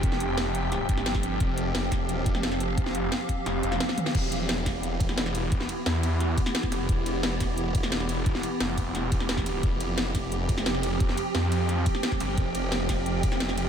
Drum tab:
CC |----------------|----------------|----------------|x---------------|
RD |----------------|----------------|----------------|--x---x---x---x-|
HH |x-x-x-x-x-x-x-x-|x-x-x-x-x-x-x-x-|x-x-x-x-x-x-x-x-|x-x-x-x-x-x-x-x-|
SD |-o--o---o--ooo--|----o-o----ooo--|-o--o---o--ooo-o|----o-o----ooo--|
T2 |----------------|----------------|--------------o-|----------------|
BD |o---------o--o--|o-----o---o-----|o-----o---------|o-----o---o-----|

CC |----------------|----------------|----------------|----------------|
RD |--x---x---x---x-|--x---x---x---x-|--x---x---x---x-|--x---x---x---x-|
HH |x-x-x-x-x-x-x-x-|x-x-x-x-x-x-x-x-|x-x-x-x-x-x-x-x-|x-x-x-x-x-x-x-x-|
SD |-o--o---o--ooo--|----o-o----ooo--|-o--o---o--ooo--|----o-o----ooo--|
T2 |----------------|----------------|----------------|----------------|
BD |o---------o--o--|o-----o---o-----|o-----o---o--o--|o-----o---o-----|

CC |----------------|----------------|
RD |--x---x---x---x-|--x---x---x---x-|
HH |x-x-x-x-x-x-x-x-|x-x-x-x-x-x-x-x-|
SD |-o--o---o--ooo--|----o-o----ooo--|
T2 |----------------|----------------|
BD |o---------o--o--|o-----o---o-----|